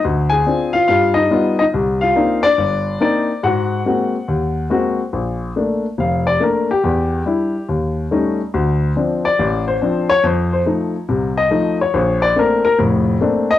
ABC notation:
X:1
M:4/4
L:1/8
Q:"Swing" 1/4=141
K:Bb
V:1 name="Grand piano"
z [_A_a]2 [Ff] [Ff] [^D^d]2 [Dd] | z [Ff]2 [Dd]3 d2 | [_G_g]6 z2 | z4 f d B G- |
G4 z4 | z3 d2 c2 _d | c c z3 e2 _d- | _d =d B B z3 e |]
V:2 name="Grand piano"
D,,2 [CDF] z G,,2 [G,=B,^DF] z | C,,2 [B,CDE] z G,,,2 [B,CDE] z | _A,,2 [_A,B,C_G] z E,,2 [A,B,CG] z | B,,,2 [A,B,D] z F,,,2 [A,B,D] z |
=E,,2 [G,D=E] z _E,,2 [G,A,_D_E] z | D,,2 [F,CD] z A,,,2 [F,CD] z | F,,2 [F,A,E] z [C,,C,]2 [F,A,E] z | B,,,2 [A,B,CD] z [F,,,A,,]2 [A,B,CD] z |]